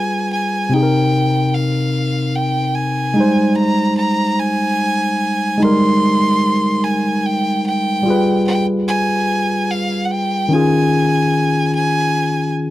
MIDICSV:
0, 0, Header, 1, 3, 480
1, 0, Start_track
1, 0, Key_signature, -4, "major"
1, 0, Tempo, 816327
1, 416, Time_signature, 6, 3, 24, 8
1, 7469, End_track
2, 0, Start_track
2, 0, Title_t, "Violin"
2, 0, Program_c, 0, 40
2, 0, Note_on_c, 0, 80, 91
2, 185, Note_off_c, 0, 80, 0
2, 194, Note_on_c, 0, 80, 74
2, 433, Note_on_c, 0, 79, 86
2, 442, Note_off_c, 0, 80, 0
2, 903, Note_on_c, 0, 77, 74
2, 912, Note_off_c, 0, 79, 0
2, 1385, Note_on_c, 0, 79, 73
2, 1394, Note_off_c, 0, 77, 0
2, 1616, Note_on_c, 0, 80, 76
2, 1624, Note_off_c, 0, 79, 0
2, 2093, Note_on_c, 0, 82, 81
2, 2102, Note_off_c, 0, 80, 0
2, 2333, Note_off_c, 0, 82, 0
2, 2336, Note_on_c, 0, 82, 88
2, 2582, Note_on_c, 0, 80, 96
2, 2591, Note_off_c, 0, 82, 0
2, 3305, Note_on_c, 0, 84, 107
2, 3314, Note_off_c, 0, 80, 0
2, 4021, Note_on_c, 0, 80, 85
2, 4030, Note_off_c, 0, 84, 0
2, 4267, Note_on_c, 0, 79, 91
2, 4276, Note_off_c, 0, 80, 0
2, 4502, Note_off_c, 0, 79, 0
2, 4507, Note_on_c, 0, 79, 88
2, 4958, Note_off_c, 0, 79, 0
2, 4979, Note_on_c, 0, 79, 83
2, 5086, Note_off_c, 0, 79, 0
2, 5220, Note_on_c, 0, 80, 90
2, 5709, Note_on_c, 0, 77, 82
2, 5718, Note_off_c, 0, 80, 0
2, 5909, Note_on_c, 0, 78, 54
2, 5918, Note_off_c, 0, 77, 0
2, 5945, Note_on_c, 0, 79, 78
2, 5954, Note_off_c, 0, 78, 0
2, 6189, Note_on_c, 0, 80, 88
2, 6198, Note_off_c, 0, 79, 0
2, 6903, Note_off_c, 0, 80, 0
2, 6911, Note_on_c, 0, 80, 92
2, 7360, Note_off_c, 0, 80, 0
2, 7469, End_track
3, 0, Start_track
3, 0, Title_t, "Tine electric piano"
3, 0, Program_c, 1, 4
3, 0, Control_c, 1, 64, 127
3, 0, Note_on_c, 1, 55, 58
3, 0, Note_on_c, 1, 65, 50
3, 0, Note_on_c, 1, 68, 56
3, 0, Note_on_c, 1, 71, 63
3, 389, Note_off_c, 1, 55, 0
3, 396, Note_off_c, 1, 65, 0
3, 403, Note_off_c, 1, 68, 0
3, 408, Note_on_c, 1, 48, 60
3, 410, Note_off_c, 1, 71, 0
3, 418, Note_on_c, 1, 60, 50
3, 425, Control_c, 1, 64, 0
3, 432, Note_on_c, 1, 63, 53
3, 446, Note_on_c, 1, 68, 50
3, 470, Note_off_c, 1, 68, 0
3, 486, Note_on_c, 1, 70, 56
3, 534, Control_c, 1, 64, 127
3, 1829, Note_off_c, 1, 48, 0
3, 1834, Note_off_c, 1, 60, 0
3, 1841, Note_off_c, 1, 63, 0
3, 1845, Note_on_c, 1, 56, 60
3, 1859, Note_on_c, 1, 63, 55
3, 1863, Control_c, 1, 64, 0
3, 1868, Note_off_c, 1, 70, 0
3, 1870, Note_on_c, 1, 55, 51
3, 1884, Note_on_c, 1, 72, 64
3, 1960, Control_c, 1, 64, 127
3, 3267, Note_off_c, 1, 56, 0
3, 3274, Note_off_c, 1, 63, 0
3, 3279, Note_on_c, 1, 56, 55
3, 3280, Note_off_c, 1, 55, 0
3, 3287, Note_off_c, 1, 72, 0
3, 3291, Note_on_c, 1, 63, 53
3, 3307, Note_on_c, 1, 55, 52
3, 3319, Note_on_c, 1, 70, 59
3, 4704, Note_off_c, 1, 56, 0
3, 4710, Note_off_c, 1, 63, 0
3, 4716, Note_off_c, 1, 55, 0
3, 4723, Note_on_c, 1, 55, 58
3, 4724, Note_off_c, 1, 70, 0
3, 4737, Note_on_c, 1, 65, 52
3, 4744, Control_c, 1, 64, 0
3, 4751, Note_on_c, 1, 68, 53
3, 4764, Note_on_c, 1, 71, 65
3, 4854, Control_c, 1, 64, 127
3, 6146, Note_off_c, 1, 55, 0
3, 6153, Note_off_c, 1, 65, 0
3, 6160, Note_off_c, 1, 68, 0
3, 6165, Note_on_c, 1, 51, 61
3, 6167, Note_off_c, 1, 71, 0
3, 6178, Note_on_c, 1, 61, 52
3, 6184, Control_c, 1, 64, 0
3, 6195, Note_on_c, 1, 65, 53
3, 6205, Note_on_c, 1, 68, 63
3, 6283, Control_c, 1, 64, 127
3, 7469, Note_off_c, 1, 51, 0
3, 7469, Note_off_c, 1, 61, 0
3, 7469, Note_off_c, 1, 65, 0
3, 7469, Note_off_c, 1, 68, 0
3, 7469, End_track
0, 0, End_of_file